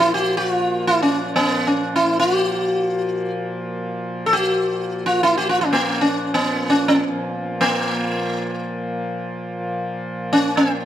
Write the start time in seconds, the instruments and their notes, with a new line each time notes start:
Already playing: harmonium A#2 F3
0.00 sitar E4
0.14 sitar F#4
0.37 sitar F#4
0.49 sitar F4
0.87 sitar E4
1.02 sitar C#4
1.36 sitar B3
1.67 sitar C#4
1.96 sitar E4
2.19 sitar F#4
4.26 sitar A4
4.33 sitar F#4
5.06 sitar F4
5.23 sitar E4
5.38 sitar F#4
5.49 sitar F4
5.61 sitar C#4
5.73 sitar A#3
6.01 sitar C#4
6.34 sitar B3
6.70 sitar C#4
6.88 sitar B3
7.04 harmonium A#2 F3
7.61 sitar A#3
10.33 sitar C#4
10.57 sitar A#3